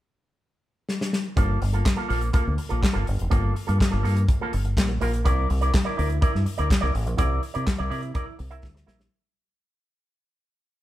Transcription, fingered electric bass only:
1.37 G1
1.62 G1
2.10 A#1
2.47 D2
2.71 A#1
2.96 G1
3.08 G1
3.21 F1
3.32 G1
3.69 G2
3.93 G1
4.06 G2
4.54 G1
4.77 A#1
5.01 A#1
5.26 C2
5.50 C2
5.99 D2
6.35 G2
6.59 D2
6.83 C2
6.95 A1
7.07 A#1
7.19 C2
7.56 C3
7.80 C2
7.91 C3
8.40 C2
8.63 D2
8.88 A#1

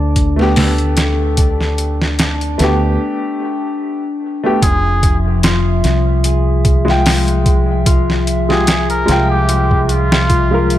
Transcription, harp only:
Already playing: D4 A4
0.57 A4
1.38 D4
2.20 D4
4.62 F4
5.44 F4
6.25 G#4
7.06 F4
7.86 F4
8.68 G#4
9.49 F4
10.29 F4

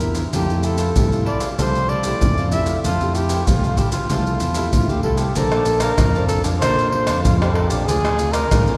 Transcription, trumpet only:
0.35 G4
0.65 A4
1.27 D5
1.52 D5
1.59 C5
1.89 D5
2.51 E5
2.84 F4
3.15 G4
3.47 F4
3.78 G4
3.92 F4
4.74 F4
4.90 G4
5.03 A4
5.18 G4
5.36 A4
5.80 A#4
6.28 A4
6.60 C5
6.90 C5
7.23 F4
7.40 G4
7.53 A4
7.68 G4
7.86 G#4
8.32 A#4

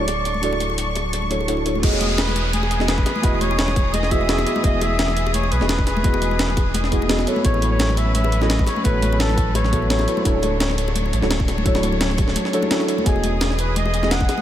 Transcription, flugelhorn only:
Already playing: D5
2.18 B4
2.53 G#4
2.89 B4
3.24 B4
3.41 C#5
3.94 D#5
4.11 E5
4.64 D#5
4.82 E5
5.34 C#5
5.52 B4
5.87 B4
7.45 C#5
7.72 C#5
7.97 E5
8.15 E5
8.42 D#5
8.67 C#5
8.85 B4
9.20 A4
9.55 C#5
9.90 C#5
13.06 G#4
13.59 B4
13.77 D#5
14.12 F#5

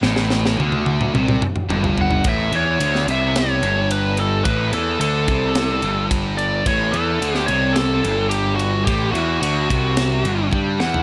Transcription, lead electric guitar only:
2.01 F#5
2.29 E5
2.55 C#5
3.11 E5
3.37 C#5
3.92 B4
4.20 A4
4.45 B4
4.74 A4
5.01 A4
6.38 D5
6.67 C#5
6.91 A4
7.37 G4
7.46 C#5
7.73 A4
8.29 G4
8.56 F#4
8.85 G4
9.12 F#4
9.41 F#4
10.80 F#5

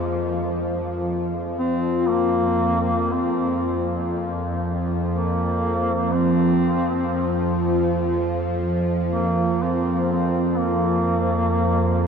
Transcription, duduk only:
1.59 C4
2.09 A#3
3.13 C4
5.14 A#3
6.14 C4
9.11 A#3
9.62 C4
10.12 C4
10.59 A#3

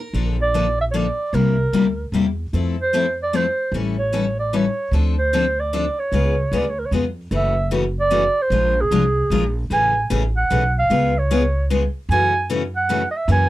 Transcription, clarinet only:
0.42 D5
0.81 E5
0.91 C#5
0.95 D5
1.34 A#4
2.81 C5
3.23 D5
3.36 C5
3.99 C#5
4.39 D5
4.56 C#5
5.19 C5
5.60 D5
5.99 C#5
6.58 D5
6.69 C#5
6.79 A#4
6.86 C#5
7.36 E5
8.00 D5
8.42 C5
8.81 G#4
9.73 G#5
10.37 F#5
10.79 F5
11.19 C#5
12.11 G#5
12.76 F#5
13.11 D#5
13.16 E5
13.32 G#5

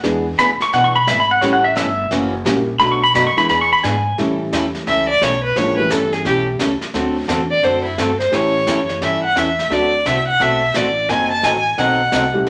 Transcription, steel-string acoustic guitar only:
0.03 E3 B3 D4 G#4
0.39 E3 B3 D4 G#4
0.73 E3 B3 D4 G#4
1.08 E3 B3 D4 G#4
1.42 E3 G3 C#4 E4 A4
1.75 E3 G3 C#4 E4 A4
2.11 C#3 E3 A#3 C#4 F#4
2.45 C#3 E3 A#3 C#4 F#4
2.80 B2 F#3 A3 D4 F#4
3.14 B2 F#3 A3 D4 F#4
3.49 E3 B3 D4 G#4
3.82 E3 B3 D4 G#4
4.19 E3 G3 C#4 E4 A4
4.53 E3 G3 C#4 E4 A4
4.86 E3 G3 C#4 E4 A4
5.21 E3 G3 C#4 E4 A4
5.55 E3 G3 C#4 E4 A4
5.90 E3 G3 C#4 E4 A4
6.25 E3 G3 C#4 E4 A4
6.59 E3 G3 C#4 E4 A4
6.94 D3 A3 C4 F#4 A4
7.28 D3 A3 C4 F#4 A4
7.63 D3 A3 C4 F#4 A4
7.98 D3 A3 C4 F#4 A4
8.32 E3 G3 C#4 E4 A4
8.67 E3 G3 C#4 E4 A4
9.01 E3 G3 C#4 E4 A4
9.35 E3 G3 C#4 E4 A4
9.70 D3 A3 C4 F#4 A4
10.05 D3 A3 C4 F#4 A4
10.40 D3 A3 C4 F#4 A4
10.75 D3 A3 C4 F#4 A4
11.09 D#3 F#3 C4 D#4 A4
11.44 D#3 F#3 C4 D#4 A4
11.79 D#3 F#3 C4 D#4 A4
12.12 D#3 F#3 C4 D#4 A4

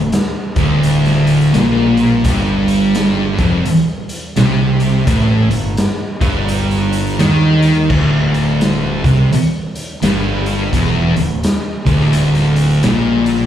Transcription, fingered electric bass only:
Already playing: D1
0.57 D1
1.55 A#1
2.25 G1
3.39 F1
3.66 muted fingered electric bass stroke
4.38 C2
5.07 A1
5.52 G1
6.21 G1
7.21 D#2
7.90 D1
9.04 C2
9.33 muted fingered electric bass stroke
10.02 G1
10.73 E1
11.16 D1
11.87 D1
12.85 A#1

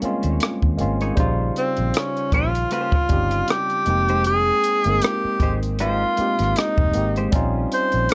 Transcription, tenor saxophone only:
1.58 C4
1.96 C#4
2.34 F4
2.73 F4
3.50 G4
4.26 G#4
5.03 G4
5.81 F4
6.58 D#4
7.74 C5

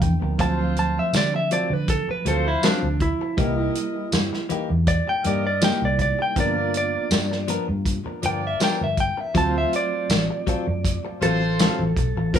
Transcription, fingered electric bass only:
0.02 E2
0.21 D2
0.39 D2
1.13 D3
1.70 D3
2.07 muted fingered electric bass stroke
2.25 D2
2.83 D2
3.38 C2
4.13 G2
4.50 muted fingered electric bass stroke
4.70 E2
5.25 G2
5.82 C2
6.36 G1
7.11 G2
7.69 G2
8.06 muted fingered electric bass stroke
8.23 G1
8.81 G1
9.35 D2
10.10 A1
10.48 muted fingered electric bass stroke
10.67 F#2
11.22 A1
11.79 A1
11.97 B1
12.17 A1
12.34 G1

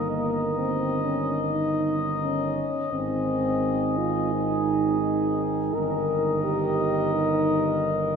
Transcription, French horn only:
0.11 A#3
0.58 C4
1.04 C#4
1.52 D#4
2.23 C#4
2.92 C4
3.97 F4
4.32 D#4
5.01 D#4
5.74 A#4
6.44 G4
7.15 D#4

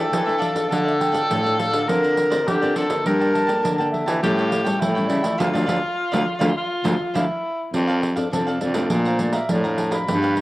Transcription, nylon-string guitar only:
Already playing: D4 E4 A4
0.12 E3
0.27 D4 E4 A4
0.55 D4 F4 A4
0.71 D3
1.13 D4 F4 A4
1.30 A2
1.45 D4 F4 A4
1.89 D3 C4 F4 A#4
2.31 C4 F4 A#4
2.47 D3
2.62 C4 F4 A#4
2.89 A#3 D4
3.06 G3
3.48 A#3 D4 A4
3.64 D3
3.79 A#3 D4 A4
4.23 A2 G3 C#4 E4
4.65 G3 C#4 E4
4.81 E3
4.97 G3 C#4 E4
5.24 F3 A3 E4
5.40 F3 A3 D4
5.54 F3 A3 D4
5.68 F3 A3 D4
6.13 F3 A3 D4
6.41 F3 A3 D4
6.86 F3 A3 D4
7.15 F3 A3 D4
7.74 F3
8.16 C4 D4 A4
8.32 C3 C4 D4 A4
8.61 C4 D4 A4
8.75 F3 A3 D4
8.91 A#2
9.19 F3 A3 D4
9.49 F2 F3 A3 D4
9.64 F3 A3 D4
10.07 G2 F3 B3 D4

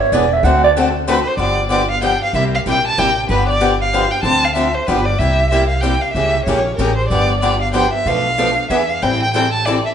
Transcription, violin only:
1.09 B4
1.23 B4
1.27 C5
1.39 D5
1.71 D5
1.91 F5
2.04 G5
2.24 F5
2.35 E5
2.55 F5
2.68 G5
2.87 A5
2.99 G5
3.30 B4
3.49 D5
3.81 F5
4.11 G5
4.24 A5
4.44 F5
4.56 E5
4.74 C5
4.87 B4
5.06 D5
5.19 E5
5.50 E5
5.69 F5
5.81 G5
6.02 F5
6.14 E5
6.45 C#5
6.77 A#4
6.97 C5
7.08 D5
7.40 D5
7.62 F5
7.74 G5
7.93 E5
8.07 F5
8.71 E5
8.89 F5
9.02 G5
9.22 G5
9.34 G5
9.53 A5
9.66 D5
9.86 E5

